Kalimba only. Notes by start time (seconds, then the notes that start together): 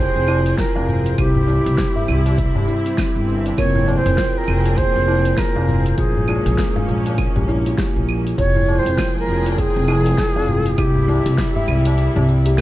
Already playing: G#4
0.28 E4
0.58 F4
0.76 F5
1.18 E4
1.48 E4
1.96 E5
2.08 E4
2.56 G4
2.68 E4
2.86 E4
2.98 E4
3.16 E4
3.58 F4
3.75 E4
4.18 F4
4.66 F4
4.78 G#4
5.08 E4
5.38 F4
5.56 F5
5.98 F4
6.28 F4
6.76 F5
6.88 F4
7.36 G4
7.49 E4
7.66 F4
7.78 G4
8.38 F4
8.56 E4
8.98 F4
9.46 F4
9.58 G#4
9.88 E4
10.18 F4
10.36 F5
10.78 E4
11.08 E4
11.56 E5
11.68 E4
12.16 G4
12.28 E4
12.46 G4